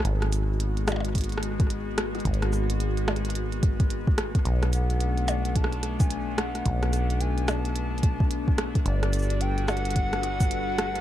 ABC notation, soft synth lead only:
X:1
M:4/4
L:1/16
Q:"Swing 16ths" 1/4=109
K:Bdor
V:1 name="Soft synth lead"
z16 | z16 | z2 f6 a3 g3 f2- | f4 g2 a8 z2 |
d4 =g2 f8- f2 |]